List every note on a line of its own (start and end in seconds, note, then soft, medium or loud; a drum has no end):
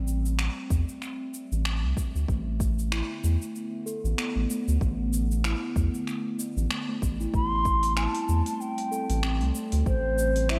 0.00 0.49 A1 medium
0.00 2.25 G3 medium
0.00 7.30 A3 medium
0.00 2.25 C4 loud
0.08 shaker medium
0.26 shaker soft
0.39 finger snap loud
0.39 shaker soft
0.70 0.84 E2 loud
0.70 kick loud
0.70 shaker medium
0.89 shaker soft
1.02 finger snap soft
1.02 shaker soft
1.34 shaker medium
1.52 1.85 A1 medium
1.52 shaker soft
1.65 finger snap loud
1.65 shaker soft
1.83 1.93 C2 medium
1.97 kick loud
1.97 shaker medium
2.15 2.25 D2 medium
2.15 shaker soft
2.28 3.02 A1 loud
2.28 7.30 D3 medium
2.28 2.45 A3 medium
2.28 7.30 B3 loud
2.28 kick loud
2.28 shaker soft
2.60 kick loud
2.60 shaker medium
2.79 shaker soft
2.92 3.22 E4 medium
2.92 finger snap loud
2.92 shaker soft
3.23 3.37 E2 medium
3.23 3.40 A3 medium
3.23 shaker medium
3.42 shaker soft
3.56 shaker soft
3.86 4.03 A4 medium
3.86 shaker medium
4.04 4.14 A1 loud
4.04 shaker soft
4.18 4.34 B3 medium
4.18 finger snap medium
4.18 shaker soft
4.36 4.46 A1 medium
4.36 4.48 A3 medium
4.50 4.67 A3 medium
4.50 shaker medium
4.68 4.78 D2 medium
4.68 shaker soft
4.81 5.54 A1 medium
4.81 4.98 A3 medium
4.81 kick loud
4.81 shaker soft
5.13 shaker medium
5.31 shaker soft
5.44 5.75 E4 medium
5.44 finger snap loud
5.44 shaker soft
5.76 5.89 E2 loud
5.76 5.93 A3 medium
5.76 kick loud
5.76 shaker medium
5.94 shaker soft
6.07 finger snap soft
6.07 shaker soft
6.39 6.55 B3 medium
6.39 shaker medium
6.57 6.67 A1 loud
6.57 shaker soft
6.71 6.81 A3 medium
6.71 finger snap medium
6.71 shaker soft
6.89 7.02 A3 medium
7.02 7.26 A1 medium
7.02 7.20 B3 loud
7.02 kick loud
7.02 shaker medium
7.20 7.28 E4 medium
7.20 shaker soft
7.33 8.07 A1 medium
7.33 10.59 G3 medium
7.33 10.59 A3 medium
7.33 7.51 A3 medium
7.33 10.59 C4 loud
7.33 7.94 C6 loud
7.33 kick loud
7.33 shaker soft
7.65 kick loud
7.65 shaker medium
7.83 open hi-hat medium
7.83 shaker soft
7.96 8.27 E4 medium
7.96 8.62 A5 medium
7.96 finger snap medium
7.96 shaker soft
8.15 open hi-hat soft
8.29 8.42 E2 medium
8.29 8.46 A3 medium
8.29 shaker medium
8.46 open hi-hat soft
8.46 shaker soft
8.61 9.55 G5 medium
8.61 shaker soft
8.78 open hi-hat soft
8.91 9.09 A4 medium
8.91 shaker medium
9.10 9.43 A1 loud
9.10 open hi-hat soft
9.10 shaker soft
9.23 9.39 C4 medium
9.23 finger snap medium
9.23 shaker soft
9.41 9.51 C2 medium
9.41 9.53 A3 medium
9.41 open hi-hat soft
9.55 9.72 A3 medium
9.55 shaker medium
9.72 9.83 D2 medium
9.72 open hi-hat medium
9.72 shaker soft
9.86 10.59 A1 loud
9.86 10.03 A3 medium
9.86 10.52 C5 loud
9.86 kick loud
9.86 shaker soft
10.18 shaker medium
10.36 open hi-hat medium
10.36 shaker soft
10.49 10.59 E4 medium
10.49 10.59 E5 medium
10.49 finger snap medium
10.49 shaker soft